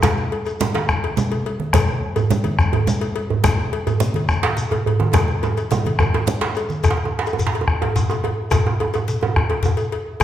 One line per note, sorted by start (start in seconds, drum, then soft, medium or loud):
0.02 bombo rim loud
0.02 bombo low loud
0.02 cowbell medium
0.02 djembe slap medium
0.02 low conga medium
0.02 djembe bass medium
0.02 shekere medium
0.18 bombo rim soft
0.18 djembe tone medium
0.31 bombo rim soft
0.31 cowbell soft
0.46 bombo rim soft
0.46 cowbell soft
0.46 djembe slap soft
0.46 shekere soft
0.60 djembe slap medium
0.60 djembe tone loud
0.60 low conga medium
0.60 shekere medium
0.74 cowbell soft
0.74 djembe slap medium
0.74 high conga medium
0.74 djembe tone medium
0.89 bombo rim loud
0.89 bombo low loud
0.89 djembe slap soft
0.89 djembe bass medium
0.89 shekere soft
1.04 cowbell medium
1.17 djembe slap medium
1.17 low conga medium
1.17 shekere medium
1.32 bombo rim soft
1.32 cowbell soft
1.32 djembe slap soft
1.32 djembe tone medium
1.46 cowbell medium
1.60 djembe slap soft
1.60 high conga medium
1.73 bombo rim loud
1.73 bombo low loud
1.73 cowbell medium
1.73 djembe slap medium
1.73 low conga medium
1.73 djembe bass medium
1.73 shekere medium
1.88 bombo rim soft
1.88 djembe tone medium
2.02 bombo rim soft
2.16 bombo rim soft
2.16 cowbell medium
2.16 djembe slap soft
2.16 djembe bass medium
2.16 shekere soft
2.31 djembe slap medium
2.31 low conga medium
2.31 shekere medium
2.44 cowbell medium
2.44 high conga medium
2.44 djembe tone medium
2.59 bombo rim loud
2.59 bombo low loud
2.59 djembe slap soft
2.59 djembe bass medium
2.59 shekere soft
2.73 cowbell medium
2.73 djembe bass medium
2.87 djembe slap medium
2.87 low conga medium
2.87 shekere medium
3.01 bombo rim soft
3.01 cowbell medium
3.01 djembe slap soft
3.01 djembe tone medium
3.16 cowbell medium
3.30 djembe slap soft
3.30 djembe bass medium
3.44 bombo rim loud
3.44 bombo low loud
3.44 cowbell medium
3.44 djembe slap medium
3.44 low conga medium
3.44 djembe bass medium
3.44 shekere medium
3.58 bombo rim soft
3.58 djembe tone soft
3.72 bombo rim soft
3.72 cowbell medium
3.87 bombo rim soft
3.87 cowbell medium
3.87 djembe slap soft
3.87 djembe bass medium
3.87 shekere soft
4.00 djembe slap medium
4.00 low conga medium
4.00 shekere medium
4.14 cowbell soft
4.14 high conga medium
4.14 djembe tone medium
4.28 bombo rim loud
4.28 bombo low loud
4.28 djembe slap soft
4.28 djembe bass medium
4.28 shekere soft
4.43 cowbell medium
4.43 djembe slap loud
4.57 djembe slap medium
4.57 shekere medium
4.71 bombo rim soft
4.71 cowbell medium
4.71 djembe slap soft
4.71 djembe tone medium
4.86 cowbell medium
4.86 djembe bass medium
5.00 djembe slap soft
5.00 djembe tone medium
5.00 high conga medium
5.13 bombo rim loud
5.13 bombo low loud
5.13 cowbell medium
5.13 djembe slap medium
5.13 djembe tone loud
5.13 djembe bass medium
5.13 low conga medium
5.13 shekere medium
5.28 bombo rim soft
5.28 djembe tone medium
5.28 high conga soft
5.42 bombo rim soft
5.42 cowbell medium
5.42 djembe slap soft
5.42 djembe tone loud
5.42 shekere soft
5.57 bombo rim soft
5.57 cowbell medium
5.57 high conga soft
5.57 shekere soft
5.71 bombo rim soft
5.71 djembe slap medium
5.71 djembe tone loud
5.71 low conga medium
5.71 shekere medium
5.85 cowbell medium
5.85 djembe slap soft
5.85 djembe tone medium
5.85 high conga medium
5.99 bombo rim loud
5.99 bombo low loud
5.99 high conga soft
5.99 djembe tone loud
5.99 djembe bass medium
5.99 shekere soft
6.14 cowbell medium
6.14 djembe tone loud
6.27 bombo rim soft
6.27 djembe slap medium
6.27 low conga medium
6.27 shekere medium
6.41 cowbell medium
6.41 djembe slap soft
6.41 djembe slap loud
6.41 djembe tone medium
6.41 high conga soft
6.55 cowbell medium
6.55 shekere soft
6.69 high conga medium
6.69 shekere soft
6.83 bombo rim medium
6.83 bombo low medium
6.83 cowbell medium
6.83 djembe slap medium
6.83 djembe bass medium
6.83 shekere medium
6.91 djembe slap medium
6.97 djembe tone soft
7.05 djembe tone medium
7.13 bombo rim soft
7.19 djembe slap medium
7.26 cowbell soft
7.26 djembe slap soft
7.26 shekere soft
7.33 djembe tone medium
7.39 bombo rim soft
7.39 djembe slap medium
7.39 djembe bass medium
7.39 shekere medium
7.47 djembe slap medium
7.53 cowbell soft
7.53 djembe tone medium
7.61 djembe tone medium
7.67 bombo rim loud
7.67 bombo low loud
7.67 djembe slap soft
7.82 cowbell soft
7.82 djembe tone loud
7.96 djembe slap medium
7.96 djembe tone medium
7.96 djembe bass medium
7.96 shekere medium
8.09 cowbell soft
8.09 djembe tone medium
8.09 shekere soft
8.23 bombo rim soft
8.23 cowbell medium
8.23 djembe tone medium
8.51 bombo rim medium
8.51 bombo low loud
8.51 cowbell medium
8.51 djembe slap medium
8.51 djembe tone loud
8.51 djembe bass medium
8.51 shekere medium
8.66 djembe tone medium
8.80 bombo rim soft
8.80 cowbell medium
8.80 djembe tone medium
8.93 cowbell medium
8.93 djembe slap soft
8.93 djembe tone medium
8.93 shekere soft
9.08 bombo rim soft
9.08 djembe slap medium
9.08 shekere medium
9.21 djembe tone medium
9.21 djembe tone loud
9.35 bombo rim loud
9.35 bombo low loud
9.35 djembe slap soft
9.35 djembe tone medium
9.50 cowbell soft
9.50 djembe tone medium
9.63 djembe slap medium
9.63 djembe tone medium
9.63 djembe bass medium
9.63 shekere medium
9.77 cowbell soft
9.77 djembe tone medium
9.77 shekere soft
9.92 cowbell medium
10.20 cowbell medium
10.20 djembe slap medium
10.20 djembe bass medium